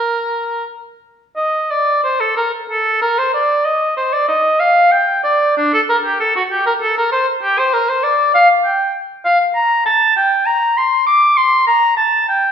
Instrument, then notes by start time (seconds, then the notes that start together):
oboe
Already playing: A#4
1.36 D#5
1.71 D5
2.03 C5
2.20 A4
2.37 A#4
2.70 A4
3.02 A#4
3.18 C5
3.34 D5
3.65 D#5
3.97 C5
4.13 D5
4.28 D#5
4.60 F5
4.91 G5
5.24 D5
5.57 D4
5.73 A4
5.89 A#4
6.05 G4
6.20 A4
6.36 F#4
6.51 G4
6.66 A#4
6.82 A4
6.97 A#4
7.12 C5
7.43 G4
7.58 C5
7.73 A#4
7.89 C5
8.03 D5
8.34 F5
8.65 G5
9.25 F5
9.55 A#5
9.86 A5
10.16 G5
10.46 A#5
10.77 C6
11.07 D6
11.37 C6
11.67 A#5
11.97 A5
12.28 G5